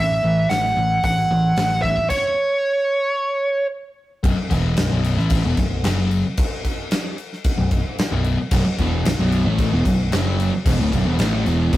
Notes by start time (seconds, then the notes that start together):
Already playing: A1 A2 E3
0.00 E5
0.23 A1 A2 E3
0.49 A1 A2 E3 F#5, snare, open hi-hat
0.76 A1 A2 E3
1.03 A1 A2 E3 F#5, kick, open hi-hat
1.31 A1 A2 E3
1.56 A1 A2 E3, snare, open hi-hat
1.82 A2 E3 E5, kick, snare
1.97 kick
2.10 C#5, kick, crash
4.23 B0 B1 F#2, kick, crash
4.36 muted distorted electric guitar stroke, muted picked electric bass stroke
4.49 E1 E2 B2 E3, kick, crash
4.76 B0 B1 F#2, snare, crash
4.90 B0 B1 F#2 B2
5.04 crash
5.17 A1 A2 E3 A3, snare
5.30 kick, crash
5.44 E1 E2 B2
5.57 B1 F#2, kick, crash
5.84 F#1 F#2 C#3 F#3, snare, crash
6.11 crash
6.37 kick, crash
6.65 kick, crash
6.91 snare, crash
7.18 crash
7.33 snare
7.44 kick, crash
7.58 B0 B1 F#2
7.71 kick, crash
7.98 muted distorted electric guitar stroke, muted picked electric bass stroke, snare, crash
8.11 B0 B1 F#2 B2
8.24 crash
8.39 muted distorted electric guitar stroke, muted picked electric bass stroke
8.51 B0 B1 F#2, kick, crash
8.65 muted picked electric bass stroke, muted distorted electric guitar stroke, muted overdriven electric guitar stroke
8.78 E1 E2 B2 E3, kick, crash
9.05 B0 B1 F#2, snare, crash
9.18 B0 B1 F#2 B2
9.32 crash
9.46 A1 A2 E3 A3
9.58 kick, crash
9.72 E1 E2 B2
9.85 B0 B1 F#2, kick, crash
10.12 F#1 F#2 C#3 F#3, snare, crash
10.40 crash
10.65 E1 E2 B2, kick, crash
10.78 D1 D2 A2
10.92 B0 B1 F#2, kick, crash
11.05 E1 E2 B2
11.19 A1 A2 E3 A3, snare, crash
11.45 E1 E2 B2 E3, crash
11.72 B0 B1 F#2 B2, kick, crash